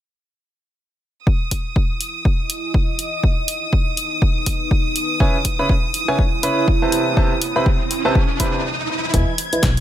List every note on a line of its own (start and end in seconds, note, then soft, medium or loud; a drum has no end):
1.27 2.99 E4 medium
1.27 9.15 D#6 medium
1.27 kick loud
1.51 kick medium
1.51 open hi-hat loud
1.76 kick loud
1.94 3.64 D#5 medium
2.01 open hi-hat medium
2.25 kick loud
2.50 open hi-hat loud
2.74 kick loud
2.99 5.20 D#4 medium
2.99 open hi-hat medium
3.23 5.90 B4 medium
3.23 kick loud
3.48 open hi-hat loud
3.67 5.20 A5 medium
3.73 kick loud
3.97 open hi-hat medium
4.22 kick loud
4.46 kick medium
4.46 open hi-hat loud
4.71 kick loud
4.96 open hi-hat medium
5.20 5.36 C#3 medium
5.20 7.83 E4 medium
5.20 5.35 E4 medium
5.20 5.36 B4 medium
5.20 5.35 C#5 medium
5.20 5.36 G#5 loud
5.20 kick loud
5.20 riser medium
5.45 kick medium
5.45 open hi-hat loud
5.59 5.71 C#3 medium
5.59 5.71 E4 medium
5.59 5.71 B4 medium
5.59 5.71 C#5 medium
5.59 5.71 B5 medium
5.69 kick loud
5.94 open hi-hat medium
5.98 8.64 B5 medium
6.08 6.20 C#3 medium
6.08 6.20 E4 medium
6.08 6.20 B4 medium
6.08 6.20 C#5 medium
6.08 6.20 G#5 loud
6.19 kick loud
6.43 6.65 C#3 medium
6.43 6.65 E4 medium
6.43 6.65 B4 medium
6.43 6.65 C#5 medium
6.43 6.65 B5 loud
6.43 open hi-hat loud
6.68 kick loud
6.82 7.15 C3 medium
6.82 7.15 E4 medium
6.82 7.15 B4 medium
6.82 7.15 C5 medium
6.82 7.15 A5 medium
6.92 8.64 C4 medium
6.92 open hi-hat medium
7.17 7.32 C3 medium
7.17 7.32 E4 medium
7.17 7.32 B4 medium
7.17 7.32 C5 medium
7.17 7.32 A5 loud
7.17 kick loud
7.42 open hi-hat loud
7.56 7.67 C3 medium
7.56 7.67 E4 medium
7.56 7.67 B4 medium
7.56 7.67 C5 medium
7.56 7.67 B5 loud
7.66 kick loud
7.91 open hi-hat medium
8.05 8.16 C3 medium
8.05 8.16 E4 medium
8.05 8.16 B4 medium
8.05 8.16 C5 medium
8.05 8.16 A5 loud
8.15 kick loud
8.40 8.62 C3 medium
8.40 8.62 E4 medium
8.40 8.62 B4 medium
8.40 8.62 C5 medium
8.40 8.62 B5 medium
8.40 kick medium
8.40 open hi-hat loud
9.14 9.25 E1 loud
9.14 9.29 E3 medium
9.14 9.80 E4 medium
9.14 9.29 E4 medium
9.14 9.29 B4 medium
9.14 9.29 D#5 medium
9.14 9.29 G#5 loud
9.14 9.80 G#6 medium
9.14 kick loud
9.14 closed hi-hat medium
9.38 open hi-hat loud
9.52 9.64 E3 medium
9.52 9.64 E4 medium
9.52 9.64 B4 medium
9.52 9.64 D#5 medium
9.52 9.80 G#5 medium
9.52 9.64 B5 loud
9.52 closed hi-hat medium
9.63 9.80 B1 loud
9.63 kick loud
9.63 snare loud
9.63 closed hi-hat medium